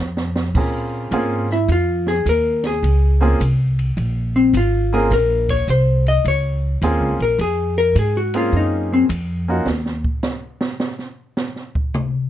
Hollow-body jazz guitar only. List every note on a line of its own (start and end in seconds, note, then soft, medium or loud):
1.52 1.70 E4 medium
1.72 2.07 F4 medium
2.08 2.26 G#4 medium
2.29 2.64 A#4 medium
2.67 3.37 G#4 medium
4.36 4.54 C4 medium
4.57 4.92 F4 medium
4.94 5.11 G#4 medium
5.13 5.49 A#4 medium
5.50 5.68 C#5 loud
5.70 6.06 C5 medium
6.08 6.26 D#5 medium
6.28 7.17 C#5 medium
7.22 7.40 A#4 medium
7.41 7.77 G#4 medium
7.78 7.96 A#4 loud
7.99 8.16 G#4 medium
8.17 8.34 F#4 medium
8.37 8.54 F4 medium
8.57 8.92 D#4 medium
8.94 9.04 C4 medium